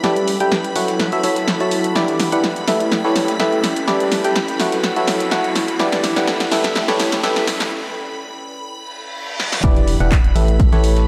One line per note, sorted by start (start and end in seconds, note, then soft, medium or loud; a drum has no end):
0.00 0.37 G3 medium
0.00 0.33 C#4 medium
0.00 0.37 E4 medium
0.00 3.31 E4 medium
0.00 0.37 G4 medium
0.00 2.35 A4 medium
0.00 0.37 A4 medium
0.00 1.24 B4 medium
0.00 0.37 B4 medium
0.00 0.37 D5 loud
0.00 0.76 G5 medium
0.00 9.62 B5 medium
0.00 9.62 B6 medium
0.00 snare medium
0.00 closed hi-hat medium
0.00 riser medium
0.16 closed hi-hat soft
0.28 closed hi-hat medium
0.28 open hi-hat loud
0.40 0.54 G3 medium
0.40 0.54 E4 medium
0.40 0.54 G4 medium
0.40 0.54 A4 medium
0.40 0.54 B4 medium
0.40 0.54 G5 loud
0.40 closed hi-hat medium
0.52 snare medium
0.52 snare loud
0.52 closed hi-hat medium
0.64 closed hi-hat soft
0.76 1.09 F#3 medium
0.76 1.09 E4 medium
0.76 1.09 F#4 medium
0.76 1.09 A4 medium
0.76 1.09 C#5 medium
0.76 1.09 F#5 medium
0.76 open hi-hat medium
0.76 open hi-hat loud
0.88 snare medium
0.88 closed hi-hat medium
0.96 1.96 F#5 medium
0.96 snare medium
0.96 closed hi-hat medium
1.12 1.21 F#3 medium
1.12 1.22 E4 medium
1.12 1.21 F#4 medium
1.12 1.22 A4 medium
1.12 1.21 C#5 medium
1.12 1.21 E5 loud
1.12 closed hi-hat soft
1.23 1.47 F#3 medium
1.23 1.47 E4 medium
1.23 1.47 F#4 medium
1.23 1.47 A4 medium
1.23 1.47 C#5 medium
1.23 1.47 E5 loud
1.23 closed hi-hat medium
1.23 open hi-hat loud
1.36 snare soft
1.36 closed hi-hat medium
1.48 snare medium
1.48 snare loud
1.48 closed hi-hat medium
1.60 1.93 F#3 medium
1.60 1.93 E4 medium
1.60 1.93 F#4 medium
1.60 1.93 A4 medium
1.60 1.93 C#5 medium
1.60 1.93 A5 medium
1.60 closed hi-hat soft
1.71 closed hi-hat medium
1.71 open hi-hat loud
1.84 closed hi-hat medium
1.84 closed hi-hat soft
1.96 2.29 E3 medium
1.96 2.29 D4 medium
1.96 2.29 E4 medium
1.96 2.29 G4 medium
1.96 2.29 B4 medium
1.96 2.29 D5 loud
1.96 snare medium
1.96 closed hi-hat medium
2.04 2.92 D5 medium
2.08 closed hi-hat soft
2.20 snare medium
2.20 closed hi-hat medium
2.20 open hi-hat loud
2.32 2.46 E3 medium
2.32 2.46 D4 medium
2.32 2.46 E4 medium
2.32 2.46 G4 medium
2.32 2.46 B4 medium
2.32 2.46 F#5 loud
2.32 closed hi-hat medium
2.39 4.60 G5 medium
2.44 snare medium
2.44 snare loud
2.44 closed hi-hat medium
2.56 closed hi-hat soft
2.68 3.01 A3 medium
2.68 3.01 E4 medium
2.68 3.01 G4 medium
2.68 3.01 A4 medium
2.68 3.01 B4 medium
2.68 3.01 E5 medium
2.68 snare medium
2.68 closed hi-hat medium
2.68 open hi-hat loud
2.80 closed hi-hat medium
2.92 4.17 C#4 medium
2.92 snare medium
2.92 closed hi-hat medium
3.04 3.37 A3 medium
3.04 3.37 E4 medium
3.04 3.37 G4 medium
3.04 3.37 A4 medium
3.04 3.37 B4 medium
3.04 3.37 C#5 medium
3.04 snare soft
3.16 snare medium
3.16 closed hi-hat medium
3.16 open hi-hat loud
3.26 6.19 A4 loud
3.26 snare medium
3.26 closed hi-hat medium
3.35 5.08 B4 medium
3.40 3.63 A3 medium
3.40 3.63 E4 medium
3.40 3.63 G4 medium
3.40 3.63 A4 medium
3.40 3.63 B4 medium
3.40 3.63 E5 loud
3.40 snare medium
3.40 snare loud
3.40 closed hi-hat medium
3.52 closed hi-hat soft
3.64 snare medium
3.64 closed hi-hat medium
3.64 open hi-hat loud
3.76 closed hi-hat medium
3.88 4.21 G3 medium
3.88 4.21 E4 medium
3.88 7.15 E4 medium
3.88 4.21 G4 medium
3.88 4.21 A4 medium
3.88 4.21 B4 medium
3.88 4.21 D5 loud
3.88 snare medium
3.88 closed hi-hat medium
4.00 closed hi-hat soft
4.12 snare medium
4.12 closed hi-hat medium
4.12 open hi-hat loud
4.24 4.38 G3 medium
4.24 4.38 E4 medium
4.24 4.38 G4 medium
4.24 4.38 A4 medium
4.24 4.38 B4 medium
4.24 4.38 G5 loud
4.24 closed hi-hat medium
4.36 snare loud
4.36 snare medium
4.36 closed hi-hat medium
4.48 closed hi-hat soft
4.60 4.93 F#3 medium
4.60 4.93 E4 medium
4.60 4.93 F#4 medium
4.60 4.93 A4 medium
4.60 4.93 C#5 medium
4.60 4.93 F#5 medium
4.60 snare medium
4.60 open hi-hat medium
4.60 open hi-hat loud
4.72 snare medium
4.72 closed hi-hat medium
4.83 snare medium
4.83 closed hi-hat medium
4.96 5.29 F#3 medium
4.96 5.29 E4 medium
4.96 5.29 F#4 medium
4.96 5.29 A4 medium
4.96 5.29 C#5 medium
4.96 5.29 E5 loud
4.96 closed hi-hat soft
5.07 snare medium
5.07 closed hi-hat medium
5.07 open hi-hat loud
5.20 snare soft
5.20 closed hi-hat medium
5.31 5.55 F#3 medium
5.31 5.55 E4 medium
5.31 5.55 F#4 medium
5.31 5.55 A4 medium
5.31 5.55 C#5 medium
5.31 5.55 F#5 loud
5.31 snare loud
5.31 snare medium
5.31 closed hi-hat medium
5.44 closed hi-hat soft
5.55 snare medium
5.55 closed hi-hat medium
5.55 open hi-hat loud
5.68 closed hi-hat soft
5.68 closed hi-hat medium
5.79 6.13 E3 medium
5.79 6.13 D4 medium
5.79 6.13 E4 medium
5.79 6.13 G4 medium
5.79 6.13 B4 medium
5.79 6.13 D5 loud
5.79 snare medium
5.79 closed hi-hat medium
5.92 snare medium
5.92 closed hi-hat medium
6.03 snare medium
6.03 closed hi-hat medium
6.03 open hi-hat loud
6.16 6.30 E3 medium
6.16 6.30 D4 medium
6.16 6.30 E4 medium
6.16 6.30 G4 medium
6.16 6.30 B4 medium
6.16 6.30 F#5 loud
6.16 snare medium
6.16 closed hi-hat medium
6.23 7.72 G5 medium
6.27 snare loud
6.27 closed hi-hat medium
6.40 snare medium
6.40 closed hi-hat medium
6.51 6.85 A3 medium
6.51 6.85 E4 medium
6.51 6.85 G4 medium
6.51 6.85 A4 medium
6.51 6.85 B4 medium
6.51 6.85 E5 medium
6.51 snare loud
6.51 closed hi-hat medium
6.51 open hi-hat loud
6.64 snare medium
6.64 closed hi-hat medium
6.75 7.72 C#4 medium
6.75 snare medium
6.75 closed hi-hat medium
6.88 7.21 A3 medium
6.88 7.21 E4 medium
6.88 7.21 G4 medium
6.88 7.21 A4 medium
6.88 7.21 B4 medium
6.88 7.21 C#5 loud
6.88 snare soft
6.88 snare medium
6.99 snare loud
6.99 closed hi-hat medium
6.99 open hi-hat loud
7.12 snare medium
7.12 closed hi-hat medium
7.23 7.47 A3 loud
7.23 7.47 E4 medium
7.23 7.47 G4 medium
7.23 7.47 A4 medium
7.23 7.47 B4 medium
7.23 7.47 E5 loud
7.23 snare loud
7.23 closed hi-hat medium
7.36 snare medium
7.36 closed hi-hat soft
7.47 snare loud
7.47 closed hi-hat medium
7.47 open hi-hat loud
7.60 snare medium
7.60 closed hi-hat medium
8.68 reverse cymbal medium
9.40 snare medium
9.52 snare medium
9.63 9.98 E1 medium
9.63 9.97 E3 medium
9.63 9.97 D4 medium
9.63 9.97 E4 medium
9.63 9.97 G4 medium
9.63 9.97 B4 medium
9.63 9.97 D5 loud
9.63 11.08 B5 medium
9.63 11.08 B6 medium
9.63 kick loud
9.63 closed hi-hat medium
9.63 impact medium
9.76 closed hi-hat soft
9.88 closed hi-hat medium
9.88 open hi-hat loud
10.00 10.33 E1 loud
10.00 10.14 E3 medium
10.00 10.14 D4 medium
10.00 10.14 E4 medium
10.00 10.14 G4 medium
10.00 10.14 B4 medium
10.00 10.14 F#5 loud
10.00 closed hi-hat soft
10.12 kick loud
10.12 snare loud
10.12 clap loud
10.12 closed hi-hat medium
10.24 closed hi-hat soft
10.36 10.70 A1 loud
10.36 10.69 A3 medium
10.36 10.69 E4 medium
10.36 10.69 G4 medium
10.36 10.69 A4 medium
10.36 10.69 B4 medium
10.36 10.69 E5 medium
10.36 closed hi-hat medium
10.36 open hi-hat medium
10.48 closed hi-hat soft
10.60 kick loud
10.60 closed hi-hat medium
10.72 11.06 A1 loud
10.72 11.05 A3 medium
10.72 11.05 E4 medium
10.72 11.05 G4 medium
10.72 11.05 A4 medium
10.72 11.05 B4 medium
10.72 11.05 C#5 loud
10.72 snare soft
10.72 closed hi-hat soft
10.84 closed hi-hat medium
10.84 open hi-hat loud
10.96 snare medium
10.96 closed hi-hat soft